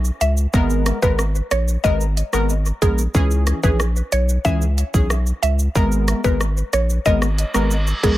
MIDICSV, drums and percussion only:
0, 0, Header, 1, 2, 480
1, 0, Start_track
1, 0, Tempo, 652174
1, 394, Time_signature, 4, 2, 24, 8
1, 6019, End_track
2, 0, Start_track
2, 0, Title_t, "Drums"
2, 34, Note_on_c, 9, 82, 49
2, 107, Note_off_c, 9, 82, 0
2, 156, Note_on_c, 9, 42, 73
2, 156, Note_on_c, 9, 82, 54
2, 229, Note_off_c, 9, 42, 0
2, 229, Note_off_c, 9, 82, 0
2, 274, Note_on_c, 9, 82, 76
2, 348, Note_off_c, 9, 82, 0
2, 394, Note_on_c, 9, 82, 71
2, 395, Note_on_c, 9, 36, 116
2, 467, Note_off_c, 9, 82, 0
2, 469, Note_off_c, 9, 36, 0
2, 515, Note_on_c, 9, 82, 50
2, 589, Note_off_c, 9, 82, 0
2, 633, Note_on_c, 9, 42, 75
2, 633, Note_on_c, 9, 82, 54
2, 635, Note_on_c, 9, 37, 88
2, 707, Note_off_c, 9, 42, 0
2, 707, Note_off_c, 9, 82, 0
2, 708, Note_off_c, 9, 37, 0
2, 754, Note_on_c, 9, 82, 66
2, 756, Note_on_c, 9, 36, 97
2, 828, Note_off_c, 9, 82, 0
2, 829, Note_off_c, 9, 36, 0
2, 874, Note_on_c, 9, 37, 93
2, 875, Note_on_c, 9, 82, 58
2, 948, Note_off_c, 9, 37, 0
2, 949, Note_off_c, 9, 82, 0
2, 996, Note_on_c, 9, 82, 48
2, 1069, Note_off_c, 9, 82, 0
2, 1114, Note_on_c, 9, 42, 80
2, 1114, Note_on_c, 9, 82, 58
2, 1115, Note_on_c, 9, 37, 90
2, 1187, Note_off_c, 9, 42, 0
2, 1187, Note_off_c, 9, 82, 0
2, 1189, Note_off_c, 9, 37, 0
2, 1237, Note_on_c, 9, 82, 69
2, 1311, Note_off_c, 9, 82, 0
2, 1355, Note_on_c, 9, 36, 89
2, 1355, Note_on_c, 9, 82, 69
2, 1429, Note_off_c, 9, 36, 0
2, 1429, Note_off_c, 9, 82, 0
2, 1478, Note_on_c, 9, 82, 52
2, 1551, Note_off_c, 9, 82, 0
2, 1599, Note_on_c, 9, 42, 77
2, 1599, Note_on_c, 9, 82, 55
2, 1673, Note_off_c, 9, 42, 0
2, 1673, Note_off_c, 9, 82, 0
2, 1716, Note_on_c, 9, 37, 91
2, 1717, Note_on_c, 9, 82, 78
2, 1790, Note_off_c, 9, 37, 0
2, 1790, Note_off_c, 9, 82, 0
2, 1836, Note_on_c, 9, 82, 74
2, 1910, Note_off_c, 9, 82, 0
2, 1955, Note_on_c, 9, 82, 49
2, 2029, Note_off_c, 9, 82, 0
2, 2075, Note_on_c, 9, 36, 95
2, 2077, Note_on_c, 9, 42, 77
2, 2077, Note_on_c, 9, 82, 54
2, 2149, Note_off_c, 9, 36, 0
2, 2150, Note_off_c, 9, 42, 0
2, 2150, Note_off_c, 9, 82, 0
2, 2195, Note_on_c, 9, 82, 80
2, 2269, Note_off_c, 9, 82, 0
2, 2315, Note_on_c, 9, 82, 68
2, 2316, Note_on_c, 9, 36, 117
2, 2388, Note_off_c, 9, 82, 0
2, 2389, Note_off_c, 9, 36, 0
2, 2435, Note_on_c, 9, 82, 54
2, 2509, Note_off_c, 9, 82, 0
2, 2552, Note_on_c, 9, 42, 77
2, 2552, Note_on_c, 9, 82, 56
2, 2553, Note_on_c, 9, 37, 84
2, 2626, Note_off_c, 9, 42, 0
2, 2626, Note_off_c, 9, 82, 0
2, 2627, Note_off_c, 9, 37, 0
2, 2674, Note_on_c, 9, 82, 65
2, 2676, Note_on_c, 9, 36, 96
2, 2748, Note_off_c, 9, 82, 0
2, 2749, Note_off_c, 9, 36, 0
2, 2795, Note_on_c, 9, 37, 91
2, 2796, Note_on_c, 9, 82, 58
2, 2868, Note_off_c, 9, 37, 0
2, 2870, Note_off_c, 9, 82, 0
2, 2916, Note_on_c, 9, 82, 47
2, 2989, Note_off_c, 9, 82, 0
2, 3034, Note_on_c, 9, 42, 83
2, 3034, Note_on_c, 9, 82, 59
2, 3108, Note_off_c, 9, 42, 0
2, 3108, Note_off_c, 9, 82, 0
2, 3157, Note_on_c, 9, 82, 70
2, 3230, Note_off_c, 9, 82, 0
2, 3274, Note_on_c, 9, 82, 70
2, 3275, Note_on_c, 9, 36, 90
2, 3348, Note_off_c, 9, 82, 0
2, 3349, Note_off_c, 9, 36, 0
2, 3397, Note_on_c, 9, 82, 51
2, 3471, Note_off_c, 9, 82, 0
2, 3518, Note_on_c, 9, 42, 74
2, 3518, Note_on_c, 9, 82, 56
2, 3592, Note_off_c, 9, 42, 0
2, 3592, Note_off_c, 9, 82, 0
2, 3636, Note_on_c, 9, 36, 95
2, 3637, Note_on_c, 9, 82, 81
2, 3710, Note_off_c, 9, 36, 0
2, 3711, Note_off_c, 9, 82, 0
2, 3755, Note_on_c, 9, 37, 93
2, 3757, Note_on_c, 9, 82, 75
2, 3828, Note_off_c, 9, 37, 0
2, 3830, Note_off_c, 9, 82, 0
2, 3875, Note_on_c, 9, 82, 49
2, 3949, Note_off_c, 9, 82, 0
2, 3997, Note_on_c, 9, 42, 74
2, 3997, Note_on_c, 9, 82, 51
2, 4070, Note_off_c, 9, 42, 0
2, 4070, Note_off_c, 9, 82, 0
2, 4115, Note_on_c, 9, 82, 79
2, 4189, Note_off_c, 9, 82, 0
2, 4235, Note_on_c, 9, 36, 113
2, 4236, Note_on_c, 9, 82, 68
2, 4309, Note_off_c, 9, 36, 0
2, 4309, Note_off_c, 9, 82, 0
2, 4356, Note_on_c, 9, 82, 53
2, 4430, Note_off_c, 9, 82, 0
2, 4474, Note_on_c, 9, 42, 77
2, 4474, Note_on_c, 9, 82, 57
2, 4476, Note_on_c, 9, 37, 81
2, 4548, Note_off_c, 9, 42, 0
2, 4548, Note_off_c, 9, 82, 0
2, 4549, Note_off_c, 9, 37, 0
2, 4595, Note_on_c, 9, 82, 65
2, 4596, Note_on_c, 9, 36, 101
2, 4668, Note_off_c, 9, 82, 0
2, 4669, Note_off_c, 9, 36, 0
2, 4715, Note_on_c, 9, 37, 94
2, 4716, Note_on_c, 9, 82, 60
2, 4788, Note_off_c, 9, 37, 0
2, 4790, Note_off_c, 9, 82, 0
2, 4836, Note_on_c, 9, 82, 46
2, 4910, Note_off_c, 9, 82, 0
2, 4954, Note_on_c, 9, 42, 80
2, 4954, Note_on_c, 9, 82, 61
2, 4956, Note_on_c, 9, 37, 88
2, 5028, Note_off_c, 9, 42, 0
2, 5028, Note_off_c, 9, 82, 0
2, 5030, Note_off_c, 9, 37, 0
2, 5076, Note_on_c, 9, 82, 71
2, 5150, Note_off_c, 9, 82, 0
2, 5194, Note_on_c, 9, 36, 88
2, 5194, Note_on_c, 9, 82, 69
2, 5267, Note_off_c, 9, 82, 0
2, 5268, Note_off_c, 9, 36, 0
2, 5313, Note_on_c, 9, 37, 93
2, 5315, Note_on_c, 9, 82, 50
2, 5387, Note_off_c, 9, 37, 0
2, 5388, Note_off_c, 9, 82, 0
2, 5435, Note_on_c, 9, 42, 75
2, 5435, Note_on_c, 9, 82, 56
2, 5509, Note_off_c, 9, 42, 0
2, 5509, Note_off_c, 9, 82, 0
2, 5552, Note_on_c, 9, 37, 94
2, 5553, Note_on_c, 9, 82, 77
2, 5626, Note_off_c, 9, 37, 0
2, 5626, Note_off_c, 9, 82, 0
2, 5674, Note_on_c, 9, 82, 73
2, 5747, Note_off_c, 9, 82, 0
2, 5793, Note_on_c, 9, 82, 49
2, 5866, Note_off_c, 9, 82, 0
2, 5913, Note_on_c, 9, 36, 96
2, 5915, Note_on_c, 9, 42, 74
2, 5915, Note_on_c, 9, 82, 52
2, 5987, Note_off_c, 9, 36, 0
2, 5989, Note_off_c, 9, 42, 0
2, 5989, Note_off_c, 9, 82, 0
2, 6019, End_track
0, 0, End_of_file